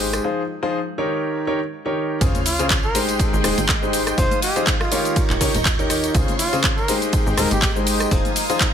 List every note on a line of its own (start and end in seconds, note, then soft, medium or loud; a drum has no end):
0.00 0.19 G#1 medium
0.00 0.22 G#3 medium
0.00 0.23 G#3 medium
0.00 0.24 G#3 loud
0.00 0.22 D#4 medium
0.00 0.22 G4 medium
0.00 0.22 G#4 medium
0.00 0.22 C5 medium
0.00 0.24 D#5 medium
0.00 0.23 G5 medium
0.00 0.22 C6 medium
0.00 open hi-hat loud
0.00 ride medium
0.13 cross-stick medium
0.13 closed hi-hat medium
0.13 tambourine medium
0.24 0.41 F3 medium
0.24 0.41 D#4 medium
0.24 0.41 F4 medium
0.24 0.41 G#4 medium
0.24 0.41 C5 medium
0.63 0.77 F3 loud
0.63 0.77 D#4 medium
0.63 0.77 F4 medium
0.63 0.77 G#4 medium
0.63 0.77 C5 loud
0.98 1.45 D#3 medium
0.98 1.45 D#4 medium
0.98 1.45 G4 medium
0.98 1.45 A#4 medium
0.98 1.45 C#5 loud
1.47 1.58 D#3 medium
1.47 1.58 D#4 medium
1.47 1.58 G4 medium
1.47 1.58 A#4 medium
1.47 1.58 C#5 loud
1.86 2.18 D#3 medium
1.86 2.18 D#4 medium
1.86 2.18 G4 medium
1.86 2.19 A#4 medium
1.86 2.18 C#5 medium
2.21 2.31 C#2 loud
2.21 2.38 C#3 medium
2.21 2.38 C#4 medium
2.21 2.38 F4 medium
2.21 2.38 G#4 medium
2.21 2.38 C5 medium
2.21 2.94 C#5 medium
2.21 4.16 C6 medium
2.21 2.94 F6 medium
2.21 kick loud
2.21 closed hi-hat medium
2.21 ride medium
2.21 tambourine medium
2.21 sub drop medium
2.21 shaker soft
2.35 closed hi-hat soft
2.35 tambourine soft
2.35 high conga medium
2.35 shaker soft
2.41 4.58 G#3 loud
2.46 2.67 F4 loud
2.46 open hi-hat loud
2.46 ride medium
2.46 shaker medium
2.55 2.74 C#3 loud
2.55 2.74 C#4 medium
2.55 2.74 F4 medium
2.55 2.74 G#4 medium
2.55 2.74 C5 loud
2.55 4.58 D#5 medium
2.59 closed hi-hat medium
2.59 tambourine medium
2.59 shaker soft
2.70 kick loud
2.70 snare loud
2.70 clap loud
2.70 closed hi-hat medium
2.70 ride medium
2.70 tambourine medium
2.70 shaker soft
2.83 3.00 A#4 medium
2.83 tambourine soft
2.95 4.17 G#3 medium
2.95 3.41 G#3 medium
2.95 3.41 D#4 medium
2.95 3.41 G4 medium
2.95 3.41 G#4 medium
2.95 3.41 C5 loud
2.95 4.17 G5 medium
2.95 open hi-hat loud
2.95 ride medium
2.95 high conga medium
2.95 shaker medium
3.09 4.58 A#5 medium
3.09 closed hi-hat medium
3.09 tambourine medium
3.09 shaker soft
3.19 4.58 C6 medium
3.19 kick loud
3.19 closed hi-hat medium
3.19 ride medium
3.19 tambourine medium
3.19 shaker soft
3.33 3.41 G#1 loud
3.33 tambourine soft
3.33 shaker soft
3.44 3.54 D#1 loud
3.44 3.55 G#3 medium
3.44 3.55 D#4 medium
3.44 3.55 G4 medium
3.44 3.55 G#4 medium
3.44 3.55 C5 loud
3.44 cross-stick medium
3.44 open hi-hat loud
3.44 ride medium
3.44 shaker medium
3.58 4.13 G#1 medium
3.58 closed hi-hat medium
3.58 ride soft
3.58 tambourine medium
3.58 high conga medium
3.58 shaker soft
3.69 kick loud
3.69 snare loud
3.69 clap loud
3.69 closed hi-hat medium
3.69 ride medium
3.69 tambourine medium
3.69 shaker soft
3.82 4.15 G#3 medium
3.82 4.15 D#4 medium
3.82 4.15 G4 medium
3.82 4.15 G#4 medium
3.82 4.15 C5 medium
3.82 tambourine soft
3.82 shaker soft
3.93 open hi-hat loud
3.93 ride medium
3.93 shaker medium
4.07 cross-stick medium
4.07 closed hi-hat medium
4.07 tambourine medium
4.07 shaker soft
4.18 4.28 F1 loud
4.18 4.35 F3 medium
4.18 4.35 D#4 medium
4.18 4.35 F4 medium
4.18 5.57 F4 medium
4.18 4.35 G#4 medium
4.18 4.40 C5 medium
4.18 4.35 C5 medium
4.18 5.15 F5 medium
4.18 5.15 D#6 medium
4.18 5.15 G#6 medium
4.18 kick loud
4.18 closed hi-hat medium
4.18 open hi-hat medium
4.18 tambourine medium
4.18 shaker soft
4.31 closed hi-hat soft
4.31 tambourine soft
4.31 high conga loud
4.31 shaker soft
4.42 4.64 G4 loud
4.42 open hi-hat loud
4.42 ride medium
4.42 shaker medium
4.56 4.71 F3 loud
4.56 4.71 D#4 medium
4.56 4.71 F4 medium
4.56 4.71 G#4 medium
4.56 4.71 C5 loud
4.56 closed hi-hat medium
4.56 tambourine medium
4.56 shaker soft
4.67 kick loud
4.67 snare loud
4.67 clap loud
4.67 closed hi-hat medium
4.67 ride medium
4.67 tambourine medium
4.67 shaker soft
4.81 5.22 F4 medium
4.81 cross-stick medium
4.81 tambourine soft
4.92 5.38 D#3 medium
4.92 5.38 D#4 medium
4.92 5.38 G4 medium
4.92 5.38 A#4 medium
4.92 5.38 C#5 loud
4.92 open hi-hat loud
4.92 ride medium
4.92 high conga medium
4.92 shaker medium
5.05 closed hi-hat medium
5.05 tambourine medium
5.05 shaker soft
5.16 6.45 D#4 medium
5.16 6.14 D#5 medium
5.16 6.14 C#6 medium
5.16 6.14 G6 medium
5.16 kick loud
5.16 closed hi-hat medium
5.16 ride medium
5.16 tambourine medium
5.16 shaker soft
5.25 6.45 A#4 medium
5.30 5.38 D#1 medium
5.30 clap soft
5.30 tambourine soft
5.30 shaker soft
5.41 5.50 C#2 loud
5.41 5.52 D#3 medium
5.41 5.52 D#4 medium
5.41 5.52 G4 medium
5.41 5.52 A#4 medium
5.41 5.52 C#5 loud
5.41 kick medium
5.41 open hi-hat loud
5.41 ride medium
5.41 shaker medium
5.51 6.09 D#1 medium
5.51 7.38 F5 medium
5.51 snare medium
5.51 closed hi-hat medium
5.55 tambourine medium
5.55 high conga loud
5.55 shaker soft
5.65 kick loud
5.65 snare loud
5.65 clap loud
5.65 closed hi-hat medium
5.65 ride medium
5.65 tambourine medium
5.65 shaker soft
5.79 6.12 D#3 medium
5.79 6.12 D#4 medium
5.79 6.12 G4 medium
5.79 6.12 A#4 medium
5.79 6.12 C#5 medium
5.79 ride soft
5.79 tambourine soft
5.79 shaker soft
5.90 cross-stick medium
5.90 open hi-hat loud
5.90 ride medium
5.90 shaker medium
6.03 closed hi-hat medium
6.03 tambourine medium
6.03 shaker soft
6.14 6.24 C#2 loud
6.14 6.31 C#3 medium
6.14 6.31 C#4 medium
6.14 6.31 F4 medium
6.14 6.31 G#4 medium
6.14 6.31 C5 medium
6.14 6.88 C#5 medium
6.14 8.09 C6 medium
6.14 6.88 F6 medium
6.14 kick loud
6.14 closed hi-hat medium
6.14 ride medium
6.14 tambourine medium
6.14 shaker soft
6.28 closed hi-hat soft
6.28 tambourine soft
6.28 high conga medium
6.28 shaker soft
6.39 6.61 F4 loud
6.39 open hi-hat loud
6.39 ride medium
6.39 shaker medium
6.44 8.52 G#3 medium
6.48 8.52 D#5 medium
6.53 6.68 C#3 loud
6.53 6.68 C#4 medium
6.53 6.68 F4 medium
6.53 6.68 G#4 medium
6.53 6.68 C5 loud
6.53 closed hi-hat medium
6.53 tambourine medium
6.53 shaker soft
6.64 kick loud
6.64 snare loud
6.64 clap loud
6.64 closed hi-hat medium
6.64 ride medium
6.64 shaker soft
6.77 6.94 A#4 medium
6.77 tambourine soft
6.88 7.35 G#3 medium
6.88 8.10 G#3 medium
6.88 7.35 D#4 medium
6.88 7.35 G4 medium
6.88 7.35 G#4 medium
6.88 7.35 C5 loud
6.88 8.10 G5 medium
6.88 open hi-hat loud
6.88 ride medium
6.88 high conga medium
6.88 shaker medium
7.02 closed hi-hat medium
7.02 tambourine medium
7.02 shaker soft
7.13 kick loud
7.13 closed hi-hat medium
7.13 ride medium
7.13 tambourine medium
7.13 shaker soft
7.18 8.52 A#5 loud
7.18 8.52 C6 medium
7.26 7.34 G#1 medium
7.26 tambourine soft
7.26 shaker soft
7.37 7.47 D#1 loud
7.37 7.49 G#3 loud
7.37 7.49 D#4 medium
7.37 7.49 G4 medium
7.37 7.49 G#4 medium
7.37 7.48 A#4 loud
7.37 7.49 C5 loud
7.37 cross-stick medium
7.37 open hi-hat loud
7.37 ride medium
7.37 shaker medium
7.51 8.06 G#1 medium
7.51 7.72 G4 loud
7.51 closed hi-hat medium
7.51 ride soft
7.51 tambourine medium
7.51 high conga medium
7.51 shaker soft
7.62 kick loud
7.62 snare loud
7.62 clap loud
7.62 closed hi-hat medium
7.62 ride medium
7.62 tambourine medium
7.62 shaker soft
7.76 8.09 G#3 medium
7.76 8.09 D#4 medium
7.76 8.09 G4 medium
7.76 8.09 G#4 medium
7.76 8.09 C5 medium
7.76 tambourine soft
7.76 shaker soft
7.87 open hi-hat loud
7.87 ride medium
7.87 shaker medium
8.00 cross-stick medium
8.00 closed hi-hat medium
8.00 tambourine medium
8.00 shaker soft
8.11 8.21 F1 loud
8.11 8.28 F3 medium
8.11 8.28 D#4 medium
8.11 8.74 F4 medium
8.11 8.28 F4 medium
8.11 8.28 G#4 medium
8.11 8.28 C5 medium
8.11 8.74 F5 medium
8.11 8.74 D#6 medium
8.11 8.74 G#6 medium
8.11 kick loud
8.11 closed hi-hat medium
8.11 open hi-hat medium
8.11 tambourine medium
8.11 shaker soft
8.25 closed hi-hat soft
8.25 tambourine soft
8.25 high conga medium
8.25 shaker soft
8.36 open hi-hat loud
8.36 ride medium
8.36 shaker medium
8.49 8.64 F3 loud
8.49 8.64 D#4 medium
8.49 8.64 F4 medium
8.49 8.64 G#4 medium
8.49 8.64 C5 loud
8.49 closed hi-hat medium
8.49 tambourine medium
8.49 shaker soft
8.60 kick loud
8.60 snare loud
8.60 clap loud
8.60 closed hi-hat medium
8.60 ride medium
8.60 shaker soft